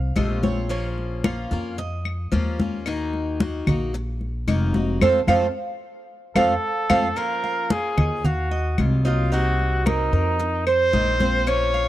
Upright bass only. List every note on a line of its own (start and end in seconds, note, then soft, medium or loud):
0.00 0.12 C2 medium
0.16 1.45 A#1 medium
1.51 2.28 F2 medium
2.32 3.60 D#2 medium
3.67 4.44 A#1 medium
4.47 4.98 F1 medium
5.01 5.21 F2 loud
5.27 5.48 F2 loud
6.35 6.56 F2 medium
6.90 7.10 F2 loud
7.97 8.74 D#2 loud
8.78 10.06 C2 loud
10.12 10.89 F2 medium
10.93 11.88 A#1 medium